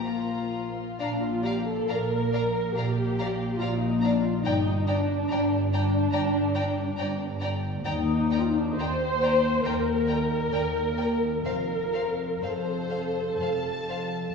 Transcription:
0.00 0.79 A#1 soft
0.00 0.80 A#2 soft
0.00 0.79 F3 soft
0.00 0.75 A#3 soft
0.00 1.00 F4 soft
0.00 0.53 A#5 soft
0.99 1.78 A#1 soft
0.99 1.78 A#2 soft
0.99 1.21 D4 medium
0.99 1.08 D5 soft
0.99 1.07 F5 soft
0.99 1.08 A#5 soft
1.23 1.44 F4 medium
1.44 1.67 G4 medium
1.44 1.52 D5 soft
1.44 1.53 F5 soft
1.44 1.53 A#5 soft
1.67 1.89 A4 medium
1.88 2.65 A#1 soft
1.88 2.65 A#2 soft
1.88 2.76 A#4 medium
1.88 1.97 D5 soft
1.88 1.96 F5 soft
1.88 1.98 A#5 soft
2.32 2.40 D5 soft
2.32 2.41 F5 soft
2.32 2.44 A#5 soft
2.75 3.49 A#1 medium
2.75 3.50 A#2 soft
2.75 3.59 G4 medium
2.75 2.85 D5 soft
2.75 2.84 F5 soft
2.75 2.85 A#5 soft
3.18 3.29 D5 soft
3.18 3.28 F5 soft
3.18 3.26 A#5 soft
3.58 4.33 A#1 medium
3.58 4.33 A#2 medium
3.58 3.80 F4 medium
3.58 3.69 D5 soft
3.58 3.70 F5 soft
3.58 3.69 A#5 soft
3.80 4.01 D#4 medium
4.01 4.22 D4 medium
4.01 4.12 D5 soft
4.01 4.11 F5 soft
4.01 4.10 A#5 soft
4.23 4.44 F4 medium
4.42 5.19 G1 medium
4.42 5.19 G2 medium
4.42 4.86 D#4 medium
4.42 4.53 G5 medium
4.42 4.52 A#5 soft
4.46 4.54 D5 medium
4.87 5.73 D4 medium
4.87 4.95 D5 soft
4.87 4.95 G5 soft
4.87 4.95 A#5 soft
5.30 6.04 G1 medium
5.30 6.04 G2 medium
5.30 5.40 D5 soft
5.30 5.39 G5 soft
5.30 5.38 A#5 soft
5.73 7.38 D4 medium
5.73 5.82 D5 soft
5.73 5.82 G5 soft
5.73 5.81 A#5 soft
6.12 6.87 G1 medium
6.12 6.87 G2 medium
6.12 6.20 D5 soft
6.12 6.21 G5 soft
6.12 6.20 A#5 soft
6.55 6.63 D5 soft
6.55 6.64 G5 soft
6.55 6.63 A#5 soft
6.97 7.74 G1 medium
6.97 7.74 G2 medium
6.97 7.07 D5 soft
6.97 7.07 G5 soft
6.97 7.05 A#5 soft
7.41 7.50 D5 soft
7.41 7.50 G5 soft
7.41 7.49 A#5 soft
7.84 8.67 D#2 medium
7.84 8.36 D#4 medium
7.84 7.93 D5 soft
7.84 7.93 G5 medium
7.84 7.93 A#5 soft
8.31 8.40 D5 soft
8.31 8.39 G5 soft
8.31 8.40 A#5 soft
8.40 8.50 F4 medium
8.49 8.59 D#4 medium
8.59 8.69 D4 medium
8.70 8.79 D#4 medium
8.78 9.55 D#2 medium
8.78 9.66 C5 medium
8.78 8.87 D5 soft
8.78 8.87 G5 soft
8.78 8.87 A#5 soft
9.22 9.31 D5 soft
9.22 9.30 G5 soft
9.22 9.33 A#5 soft
9.65 10.42 D#2 soft
9.65 10.42 D#2 medium
9.65 11.44 A#4 medium
9.65 9.73 D5 soft
9.65 9.74 G5 soft
9.65 9.73 A#5 soft
10.08 10.17 D5 soft
10.08 10.16 G5 soft
10.08 10.18 A#5 soft
10.51 11.35 D#2 soft
10.51 11.35 D#2 medium
10.51 10.59 D5 soft
10.51 10.60 G5 soft
10.51 10.63 A#5 soft
10.97 11.05 D5 soft
10.97 11.05 G5 soft
10.97 11.08 A#5 soft
11.45 12.31 F1 soft
11.45 12.31 F2 soft
11.45 12.40 A#4 medium
11.45 11.53 C5 soft
11.45 11.53 F5 soft
11.45 11.55 F5 soft
11.93 12.02 C5 soft
11.93 12.01 F5 soft
11.93 12.02 F5 soft
12.42 13.28 F1 soft
12.42 13.28 F2 soft
12.42 14.35 A4 soft
12.42 12.50 C5 soft
12.42 13.36 C5 soft
12.42 12.51 F5 soft
12.90 12.98 C5 soft
12.90 12.98 F5 soft
13.40 14.23 F1 soft
13.40 14.22 F2 soft
13.40 13.50 C5 soft
13.40 13.49 F5 soft
13.40 14.33 A5 soft
13.90 13.98 C5 soft
13.90 13.98 F5 soft

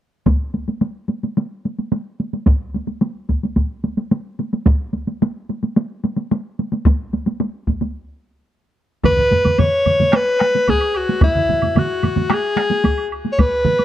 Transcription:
0.26 taiko medium
0.26 taiko high medium
0.54 taiko high soft
0.68 taiko high soft
0.81 taiko high soft
1.08 taiko high soft
1.23 taiko high soft
1.37 taiko high soft
1.65 taiko high soft
1.78 taiko high soft
1.92 taiko high medium
2.20 taiko high soft
2.33 taiko high soft
2.46 taiko medium
2.46 taiko high soft
2.74 taiko high soft
2.87 taiko high soft
3.01 taiko high soft
3.29 taiko medium
3.29 taiko high soft
3.43 taiko high soft
3.56 taiko soft
3.56 taiko high soft
3.84 taiko high soft
3.98 taiko high soft
4.11 taiko high medium
4.39 taiko high soft
4.53 taiko high soft
4.66 taiko medium
4.66 taiko high medium
4.93 taiko high soft
5.07 taiko high soft
5.22 taiko high medium
5.50 taiko high soft
5.63 taiko high soft
5.76 taiko high medium
6.04 taiko high medium
6.16 taiko high soft
6.31 taiko high medium
6.59 taiko high soft
6.72 taiko high soft
6.85 taiko medium
6.85 taiko high medium
7.13 taiko high soft
7.26 taiko high soft
7.40 taiko high medium
7.67 taiko medium
7.67 taiko high soft
7.81 taiko high soft
9.04 9.61 B4 medium
9.04 taiko medium
9.04 taiko low-mid medium
9.04 taiko mid medium
9.04 taiko high medium
9.04 high woodblock soft
9.18 taiko low-mid medium
9.18 taiko mid medium
9.31 taiko low-mid medium
9.31 taiko mid medium
9.31 taiko high soft
9.45 taiko low-mid medium
9.45 taiko mid medium
9.45 taiko high soft
9.45 high woodblock soft
9.58 10.17 C#5 medium
9.58 taiko low-mid medium
9.58 taiko mid medium
9.58 taiko high soft
9.58 high woodblock soft
9.86 taiko low-mid medium
9.86 taiko mid medium
9.86 taiko high soft
9.86 high woodblock soft
9.99 taiko low-mid medium
9.99 taiko mid medium
9.99 taiko high soft
10.12 10.71 B4 loud
10.12 taiko rim medium
10.12 taiko high medium
10.12 high woodblock soft
10.40 taiko rim medium
10.40 taiko high soft
10.55 taiko high soft
10.68 10.99 G#4 medium
10.68 taiko medium
10.68 taiko high medium
10.68 high woodblock soft
10.81 high woodblock soft
10.94 11.23 F#4 medium
10.94 high woodblock soft
11.09 taiko high soft
11.21 11.80 E4 medium
11.21 taiko loud
11.21 taiko low-mid medium
11.21 taiko mid medium
11.21 taiko high medium
11.21 high woodblock soft
11.35 taiko low-mid medium
11.35 taiko mid medium
11.49 taiko low-mid medium
11.49 taiko mid medium
11.49 taiko high soft
11.62 taiko low-mid medium
11.62 taiko mid medium
11.62 taiko high soft
11.62 high woodblock soft
11.75 12.35 F#4 medium
11.75 taiko low-mid medium
11.75 taiko mid medium
11.75 taiko high medium
11.75 high woodblock soft
12.03 taiko low-mid medium
12.03 taiko mid medium
12.03 taiko high soft
12.03 high woodblock soft
12.16 taiko low-mid medium
12.16 taiko mid medium
12.16 taiko high medium
12.30 taiko rim medium
12.30 taiko high medium
12.30 high woodblock medium
12.34 13.13 G#4 medium
12.56 taiko rim medium
12.56 taiko high soft
12.70 taiko high soft
12.84 taiko medium
12.84 taiko high medium
12.84 high woodblock soft
12.98 high woodblock soft
13.12 high woodblock soft
13.25 taiko high soft
13.32 13.41 C#5 medium
13.39 13.85 B4 medium
13.39 taiko medium
13.39 taiko high medium
13.39 high woodblock medium
13.65 taiko low-mid medium
13.65 taiko mid medium
13.65 taiko high soft
13.79 taiko high soft
13.79 high woodblock soft

